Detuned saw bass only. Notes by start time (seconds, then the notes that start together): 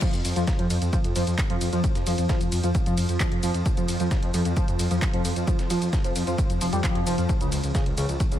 0.14 F2
0.25 F2
0.36 F2
0.59 F2
0.70 F2
0.82 F2
1.04 F2
1.16 F2
1.27 F2
1.50 F2
1.61 F2
1.73 F2
1.95 F2
2.07 F2
2.18 F2
2.41 F2
2.52 F2
2.63 F2
2.86 F2
2.97 F2
3.09 F2
3.32 F2
3.43 F2
3.54 F2
3.77 F2
3.88 F2
4.00 F2
4.23 F2
4.34 F2
4.45 F2
4.68 F2
4.79 F2
4.91 F2
5.13 F2
5.25 F2
5.36 F2
5.59 F2
5.70 F2
5.82 F2
6.05 F2
6.16 F2
6.27 F2
6.50 F2
6.61 F1
6.73 F2
6.95 F2
7.07 F1
7.18 F2
7.41 C#2
7.52 C#2
7.64 C#2
7.86 C#2
7.97 C#2
8.09 C#2
8.32 C#2